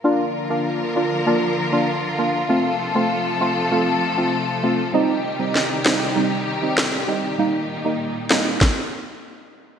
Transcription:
0.04 D3 F3 A#3 D4 F4 A#4
0.50 A#3 D4 F4
0.96 A#3 D4 F4
1.26 A#3 D4 F4
1.72 A#3 D4 F4
2.18 A#3 D4 F4
2.49 C3 F3 A3 C4 F4 A4
2.95 A3 C4 F4
3.41 A3 C4 F4
3.71 A3 C4 F4
4.17 A3 C4 F4
4.63 A3 C4 F4
4.93 C3 D#3 G3 C4 D#4 G4
5.39 G3 C4 D#4
5.55 snare
5.85 G3 C4 D#4, snare
6.16 G3 C4 D#4
6.62 G3 C4 D#4
6.78 snare
7.08 G3 C4 D#4
7.38 A#2 D#3 G3 A#3 D#4
7.84 G3 A#3 D#4
8.30 G3 A#3 D#4, snare
8.61 kick, snare

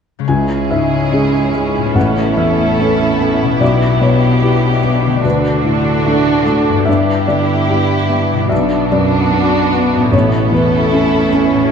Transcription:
0.19 C#3 G#3 C#4
0.24 G#3 C#4 G#4 G#5
0.28 C#2 C#3 E4
0.71 G#2 E5
1.12 G#3 C#4 G#4
1.54 G#3
1.77 A2
1.82 B3
1.86 C#4
1.91 A2 A4
1.95 A1 B3 F#5
2.37 E2 E5
2.80 B3 C#4 A4
3.20 B3
3.43 B2
3.47 B3
3.52 E4
3.56 D4 G4
3.60 B1 B2 D5
4.01 B2 C#5
4.42 B3 E4 G4
4.83 B3
5.06 D3
5.10 A3
5.15 D4
5.19 F#4
5.23 D2 D3 A3 D4 F#4 B4
5.64 A2
6.05 A3 D4 F#4
6.45 A3
6.69 G2
6.73 B3
6.78 E4
6.83 G2 G4 E5
6.87 G2 B3 E4 G4
7.28 D3 D5
7.69 B3 E4 G4
8.09 B3
8.32 B2
8.37 B3
8.41 D4
8.46 F#4 E5
8.51 B1 B2 D4 F#4
8.92 F#2 D5
9.32 B3 D4 F#4
9.72 B3
9.95 A2
10.00 C#4
10.04 E4
10.09 A1 A2 A3 C#4
10.13 E4 A4 C#5
10.52 E2 B4
10.92 C#4 E4 A4
11.32 C#4
11.54 A2
11.59 C#4
11.63 F#4
11.68 G#5

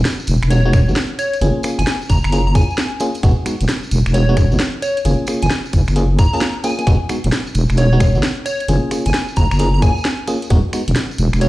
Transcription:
0.05 snare, closed hi-hat, tambourine
0.20 tambourine
0.27 E1, closed hi-hat, tambourine
0.42 E1, finger snap, tambourine
0.50 G#3 B3 D#4 F#4 C#5, closed hi-hat, tambourine
0.65 G#3 B3 D#4 F#4
0.73 finger snap, kick, closed hi-hat, tambourine
0.88 G#1 G#3 B3 D#4 F#4, tambourine
0.96 snare, closed hi-hat, tambourine
1.19 C#5, closed hi-hat, tambourine
1.34 closed hi-hat, tambourine
1.41 F#1 A#3 C#4 F4 G#4, closed hi-hat, tambourine
1.63 A#3 C#4 F4 G#4, finger snap, closed hi-hat, tambourine
1.79 F#1 G#5, closed hi-hat, tambourine
1.87 snare, closed hi-hat, tambourine
2.02 tambourine
2.09 F#1 A#5, kick, closed hi-hat, tambourine
2.24 F#1 A#5, finger snap, tambourine
2.32 A#3 C#4 F4 G#4 A#5, closed hi-hat, tambourine
2.47 A#5
2.55 A#3 C#4 F4 G#4 G#5, kick, closed hi-hat, tambourine
2.70 tambourine
2.78 snare, closed hi-hat, tambourine
3.00 A#3 C#4 F4 G#4, closed hi-hat, tambourine
3.14 closed hi-hat, tambourine
3.23 E1 G#3 B3 D#4 F#4, kick, closed hi-hat, tambourine
3.46 G#3 B3 D#4 F#4, finger snap, closed hi-hat, tambourine
3.61 E1, closed hi-hat, tambourine
3.69 snare, closed hi-hat, tambourine
3.83 tambourine
3.91 E1, closed hi-hat, tambourine
4.06 E1, finger snap, tambourine
4.14 G#3 B3 D#4 F#4 C#5, closed hi-hat, tambourine
4.29 G#3 B3 D#4 F#4
4.37 finger snap, kick, closed hi-hat, tambourine
4.51 G#1 G#3 B3 D#4 F#4, tambourine
4.59 snare, closed hi-hat, tambourine
4.82 C#5, closed hi-hat, tambourine
4.97 closed hi-hat, tambourine
5.05 F#1 A#3 C#4 F4 G#4, closed hi-hat, tambourine
5.27 A#3 C#4 F4 G#4, finger snap, closed hi-hat, tambourine
5.42 F#1 G#5, closed hi-hat, tambourine
5.50 snare, closed hi-hat, tambourine
5.66 tambourine
5.73 F#1, kick, closed hi-hat, tambourine
5.88 F#1, finger snap, tambourine
5.96 A#3 C#4 F4 G#4, closed hi-hat, tambourine
6.19 A#5, kick, closed hi-hat, tambourine
6.33 A#3 C#4 F4 G#4 A#5, tambourine
6.41 snare, closed hi-hat, tambourine
6.64 A#3 C#4 F4 G#4 G#5, closed hi-hat, tambourine
6.78 A#3 C#4 F4 G#4, closed hi-hat, tambourine
6.87 E1 G#3 B3 D#4 F#4, kick, closed hi-hat, tambourine
7.09 G#3 B3 D#4 F#4, finger snap, closed hi-hat, tambourine
7.24 E1, closed hi-hat, tambourine
7.32 snare, closed hi-hat, tambourine
7.47 tambourine
7.55 E1, closed hi-hat, tambourine
7.69 E1, finger snap, tambourine
7.77 G#3 B3 D#4 F#4 C#5, closed hi-hat, tambourine
7.93 G#3 B3 D#4 F#4
8.00 finger snap, kick, closed hi-hat, tambourine
8.15 G#1 G#3 B3 D#4 F#4, tambourine
8.23 snare, closed hi-hat, tambourine
8.46 C#5, closed hi-hat, tambourine
8.60 closed hi-hat, tambourine
8.68 F#1 A#3 C#4 F4 G#4, closed hi-hat, tambourine
8.91 A#3 C#4 F4 G#4, finger snap, closed hi-hat, tambourine
9.05 F#1 G#5, closed hi-hat, tambourine
9.14 snare, closed hi-hat, tambourine
9.28 tambourine
9.36 F#1 A#5, kick, closed hi-hat, tambourine
9.51 F#1 A#5, finger snap, tambourine
9.59 A#3 C#4 F4 G#4 A#5, closed hi-hat, tambourine
9.74 A#5
9.82 A#3 C#4 F4 G#4 G#5, kick, closed hi-hat, tambourine
9.97 tambourine
10.04 snare, closed hi-hat, tambourine
10.28 A#3 C#4 F4 G#4, closed hi-hat, tambourine
10.42 closed hi-hat, tambourine
10.50 E1 G#3 B3 D#4 F#4, kick, closed hi-hat, tambourine
10.73 G#3 B3 D#4 F#4, finger snap, closed hi-hat, tambourine
10.88 E1, closed hi-hat, tambourine
10.96 snare, closed hi-hat, tambourine
11.11 tambourine
11.18 E1, closed hi-hat, tambourine
11.33 E1, finger snap, tambourine
11.41 G#3 B3 D#4 F#4 C#5, closed hi-hat, tambourine

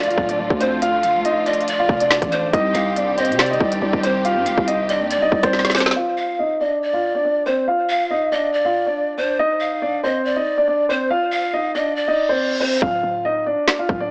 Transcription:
Already playing: D3 F3 A3 F4 D5
0.03 closed hi-hat
0.08 F4 F5, closed hi-hat
0.18 D1, kick
0.29 D4 D5, closed hi-hat
0.39 D1 D4 D5
0.50 D2, kick
0.60 C4 C5, closed hi-hat
0.82 F4 F5, closed hi-hat
1.03 F1 F5, closed hi-hat
1.15 D2
1.25 D#4 D#5, closed hi-hat
1.46 D4 D5 D#5, closed hi-hat
1.53 closed hi-hat
1.61 closed hi-hat
1.68 D5, closed hi-hat
1.79 F4 F5
1.89 F1, kick
2.00 D4 D5, closed hi-hat
2.11 finger snap, snare
2.22 A1, kick, closed hi-hat
2.32 D4 C5 D5, closed hi-hat
2.53 C2 D#3 G3 C4 D#4 G4 D#5, kick, closed hi-hat
2.74 C2 F5, closed hi-hat
2.96 D4 D5, closed hi-hat
3.18 C4 C5 D#5, closed hi-hat
3.25 closed hi-hat
3.29 C3, closed hi-hat
3.39 D5, finger snap, snare, closed hi-hat
3.46 closed hi-hat
3.51 D#4 D#5, closed hi-hat
3.60 C2, kick
3.72 D4 D5, closed hi-hat
3.82 C2 D4 D5
3.93 C2, kick
4.03 C4 C5, closed hi-hat
4.25 F4 F5, closed hi-hat
4.36 G2
4.46 C2 F5, closed hi-hat
4.58 C2, kick
4.68 D#4 D#5, closed hi-hat
4.89 D4 D5 D#5, closed hi-hat
5.00 D#2
5.10 D5, closed hi-hat
5.16 C2
5.22 D#4 D#5
5.32 C2, kick
5.43 C2 C4 C5, kick, cross-stick, closed hi-hat
5.53 snare
5.59 snare
5.65 snare, closed hi-hat
5.70 snare, closed hi-hat
5.75 C4 C5, snare, closed hi-hat, open hi-hat
5.80 snare
5.86 snare
5.91 snare
5.96 F4 F5
6.18 F5
6.39 D#4 D#5
6.60 D4 D5 D#5
6.83 D5
6.93 F4 F5
7.15 D4 D5
7.25 D4 D5
7.46 C4 C5
7.68 F4 F5
7.89 F5
8.10 D#4 D#5
8.32 D4 D5 D#5
8.53 D5
8.65 F4 F5
8.86 D4 D5
9.18 D4 C5 D5
9.39 D#4 D#5
9.60 F5
9.82 D4 D5
10.04 C4 C5 D#5
10.25 D5
10.36 D#4 D#5
10.58 D4 D5
10.68 D4 D5
10.89 C4 C5
11.11 F4 F5
11.32 F5
11.53 D#4 D#5
11.75 D4 D5 D#5
11.96 D5, reverse cymbal
12.08 D#4 D#5
12.29 C4 C5
12.61 C4 C5
12.82 D1 F4 F5, kick
13.03 D1
13.25 D#4 D#5
13.46 D4 D5
13.68 finger snap, snare
13.79 F4 F5
13.89 D1, kick
14.00 D4 D5

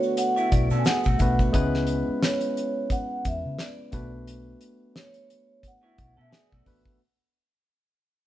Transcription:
Already playing: D3 A3 B3 D4 F#4 B4 C#5
0.03 shaker
0.17 F#5, closed hi-hat, shaker
0.36 E4 C#5, shaker
0.52 B1 D5, kick, closed hi-hat
0.70 B2 C#4 A4, shaker
0.79 G#5
0.85 B3 G#4 F#5, snare, closed hi-hat, shaker
1.04 B1 A3 F#4, kick, shaker
1.18 B1 A3 B3 D4 F#4 B4, kick, closed hi-hat, shaker
1.39 kick, shaker
1.53 C#2 G#3 B3 C#4 E4 B4, kick, closed hi-hat
1.74 snare
1.87 closed hi-hat
2.09 muted fingered electric bass stroke
2.23 C#5, snare, closed hi-hat
2.41 closed hi-hat
2.57 closed hi-hat
2.90 F#5, kick, closed hi-hat
3.25 E2 E5, kick, closed hi-hat
3.45 C#3
3.59 D5, snare, closed hi-hat
3.92 B1 A3 B3 D4 F#4 B4, kick, closed hi-hat
4.27 closed hi-hat
4.61 closed hi-hat
4.96 C#5, snare, closed hi-hat
5.14 closed hi-hat
5.30 closed hi-hat
5.63 kick, closed hi-hat
5.68 F#5
5.83 E4 C#5
5.98 B1, kick, closed hi-hat
6.17 B2 C#4 A4
6.21 E5
6.31 B3 G#4 D5, snare, closed hi-hat
6.51 B1 A3 F#4, kick
6.64 A1 A3 B3 D4 F#4 B4, kick, open hi-hat
6.85 kick

